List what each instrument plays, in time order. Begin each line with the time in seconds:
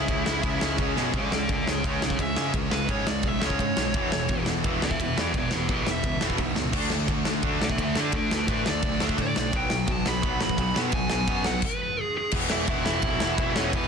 Already playing: overdriven electric guitar C#3 G#3 C#4, lead electric guitar E4 E5
0.08 picked electric bass C#2, distorted electric guitar C#3 G#3 C#4, kick, ride
0.26 picked electric bass C#2, distorted electric guitar C#3 G#3 C#4, snare
0.42 picked electric bass C#2, distorted electric guitar C#3 G#3 C#4, kick, ride
0.61 picked electric bass C#2, distorted electric guitar C#3 G#3 C#4, snare
0.78 picked electric bass C#2, distorted electric guitar C#3 G#3 C#4, kick, ride
0.96 picked electric bass B2, overdriven electric guitar C#3 G#3 C#4, snare
1.13 picked electric bass C#2, overdriven electric guitar C#3 G#3 C#4, kick, ride
1.17 lead electric guitar A4 D5
1.31 picked electric bass C#2, overdriven electric guitar C#3 G#3, lead electric guitar A4, snare
1.36 lead electric guitar D5
1.49 picked electric bass C#2, overdriven electric guitar C#3 G#3, lead electric guitar A4 D5, kick, ride
1.65 picked electric bass C#2, overdriven electric guitar C#3 G#3, distorted electric guitar C#4, snare
1.70 lead electric guitar G#4 C#5
1.84 picked electric bass C#2, overdriven electric guitar C#3 G#3 C#4, lead electric guitar G#4 C#5, kick, ride
2.02 picked electric bass B1, overdriven electric guitar C#3 G#3, lead electric guitar G#4 C#5, snare
2.10 kick
2.19 picked electric bass C#2, overdriven electric guitar C#3 G#3, distorted electric guitar C#4, lead electric guitar E5, kick, ride
2.36 overdriven electric guitar C#3 G#3 C#4, picked electric bass C#3, snare
2.53 picked electric bass C#2, overdriven electric guitar C#3 G#3, distorted electric guitar C#4, kick, ride
2.71 picked electric bass C#2, overdriven electric guitar C#3 G#3, lead electric guitar B4, snare
2.89 picked electric bass G#2, overdriven electric guitar C#3 G#3 C#4, lead electric guitar C#5, kick, ride
3.06 picked electric bass C#2, overdriven electric guitar C#3 G#3, distorted electric guitar C#4, lead electric guitar D5, snare
3.23 picked electric bass B1, overdriven electric guitar C#3 G#3, kick, ride
3.27 lead electric guitar E5
3.42 picked electric bass C#2, overdriven electric guitar C#3 G#3 C#4, snare
3.46 lead electric guitar C#5, kick
3.59 picked electric bass G#2, overdriven electric guitar C#3 G#3, distorted electric guitar C#4, kick, ride
3.77 picked electric bass B1, overdriven electric guitar C#3 G#3, snare
3.94 picked electric bass E1, overdriven electric guitar E2 B2 E3, kick, ride
4.12 picked electric bass E1, overdriven electric guitar E2 B2, snare
4.29 picked electric bass E1, overdriven electric guitar E2 B2, kick, ride
4.46 picked electric bass E1, overdriven electric guitar E2 B2, distorted electric guitar E3, snare
4.64 picked electric bass E1, overdriven electric guitar E2 B2 E3, kick, ride
4.82 picked electric bass C#2, overdriven electric guitar E2 B2, lead electric guitar B4 E5, snare
4.91 kick
5.00 picked electric bass E1, overdriven electric guitar E2 B2, distorted electric guitar E3, lead electric guitar B4 E5, kick, ride
5.18 picked electric bass E2, overdriven electric guitar E2 B2 E3, lead electric guitar B4 D5, snare
5.34 picked electric bass E1, overdriven electric guitar E2 B2, distorted electric guitar E3, lead electric guitar B4 D5, kick, ride
5.51 picked electric bass E1, overdriven electric guitar E2 B2, lead electric guitar G4, snare
5.55 lead electric guitar B4
5.69 picked electric bass B1, overdriven electric guitar E2 B2 E3, lead electric guitar G4 B4, kick, ride
5.85 picked electric bass E1, overdriven electric guitar E2 B2, distorted electric guitar E3, snare
5.91 lead electric guitar E5
6.04 picked electric bass C#2, overdriven electric guitar E2 B2, kick, ride
6.21 picked electric bass E1, overdriven electric guitar E2 B2 E3, snare
6.30 kick
6.38 picked electric bass B1, overdriven electric guitar E2 B2, distorted electric guitar E3, kick, ride
6.56 picked electric bass C#2, overdriven electric guitar E2 B2, snare
6.73 picked electric bass D2, overdriven electric guitar D3 A3 D4, kick, crash
6.90 picked electric bass D2, overdriven electric guitar D3 A3, snare
7.08 picked electric bass D2, overdriven electric guitar D3 A3, kick, ride
7.25 picked electric bass D2, overdriven electric guitar D3 A3, distorted electric guitar D4, snare
7.43 picked electric bass D2, overdriven electric guitar D3 A3 D4, kick, ride
7.60 picked electric bass B1, overdriven electric guitar D3 A3, lead electric guitar B4, snare
7.64 lead electric guitar E5
7.70 kick
7.78 picked electric bass D2, overdriven electric guitar D3 A3, distorted electric guitar D4, kick, ride
7.82 lead electric guitar B4 E5
7.95 overdriven electric guitar D3 A3 D4, picked electric bass D3, lead electric guitar A4, snare
8.00 lead electric guitar D5
8.12 picked electric bass D2, overdriven electric guitar D3 A3, distorted electric guitar D4, kick, ride
8.16 lead electric guitar A4 D5
8.31 picked electric bass D2, overdriven electric guitar D3 A3, lead electric guitar F#4 B4, snare
8.47 picked electric bass A2, overdriven electric guitar D3 A3 D4, lead electric guitar F#4, kick, ride
8.52 lead electric guitar B4
8.65 picked electric bass D2, overdriven electric guitar D3 A3, distorted electric guitar D4, snare
8.70 lead electric guitar D5
8.82 picked electric bass B1, overdriven electric guitar D3 A3, kick, ride
9.00 picked electric bass D2, overdriven electric guitar D3 A3 D4, snare
9.09 kick
9.18 picked electric bass A2, overdriven electric guitar D3 A3, distorted electric guitar D4, lead electric guitar D5, kick, ride
9.36 picked electric bass B1, overdriven electric guitar D3 A3, snare
9.53 picked electric bass B1, overdriven electric guitar B2 F#3 B3, lead electric guitar G5, kick, ride
9.70 picked electric bass B1, overdriven electric guitar B2 F#3, snare
9.88 picked electric bass B1, overdriven electric guitar B2 F#3, lead electric guitar A5, kick, ride
10.05 picked electric bass B1, overdriven electric guitar B2 F#3, distorted electric guitar B3, lead electric guitar B5, snare
10.23 picked electric bass B1, overdriven electric guitar B2 F#3 B3, kick, ride
10.41 picked electric bass A1, overdriven electric guitar B2 F#3, lead electric guitar B5, snare
10.49 kick
10.58 picked electric bass B1, overdriven electric guitar B2 F#3, distorted electric guitar B3, kick, ride
10.75 overdriven electric guitar B2 F#3 B3, picked electric bass B2, snare
10.92 picked electric bass B1, overdriven electric guitar B2 F#3, distorted electric guitar B3, lead electric guitar G#5, kick, ride
11.10 picked electric bass B1, overdriven electric guitar B2 F#3, snare
11.28 picked electric bass F#2, overdriven electric guitar B2 F#3 B3, kick, ride
11.44 picked electric bass B1, overdriven electric guitar B2 F#3, distorted electric guitar B3, lead electric guitar F#5, snare
11.62 lead electric guitar B4, kick, crash
12.00 lead electric guitar G#4
12.17 lead electric guitar G#4
12.31 picked electric bass E1, overdriven electric guitar E2 B2 E3, kick, crash
12.50 picked electric bass E1, overdriven electric guitar E2 B2 E3, lead electric guitar E4 E5, snare
12.67 picked electric bass E1, overdriven electric guitar E2 B2 E3, lead electric guitar E4 E5, kick, ride
12.85 overdriven electric guitar E2 B2 E3, lead electric guitar E4 E5, snare
13.02 picked electric bass B1, overdriven electric guitar E2 B2 E3, kick, ride
13.20 picked electric bass E1, overdriven electric guitar E2 B2 E3, snare
13.38 picked electric bass E1, overdriven electric guitar E2 B2 E3, kick, ride
13.56 picked electric bass E1, overdriven electric guitar E2 B2 E3, lead electric guitar C#4 C#5, snare
13.73 picked electric bass E1, overdriven electric guitar E2 B2 E3, lead electric guitar B3 B4, kick, ride